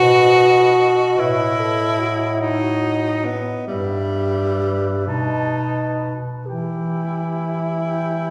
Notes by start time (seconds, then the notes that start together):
Already playing: B2 F#4 B4
0.00 D#5
1.18 A2 E4 B4 D#5
1.60 A4
1.99 F#4
2.41 D#4 D#5
3.25 B3
3.67 G2 G3 B4 E5
5.07 B2 D#4 A5
6.46 E3 E4 G4 G5
7.88 G5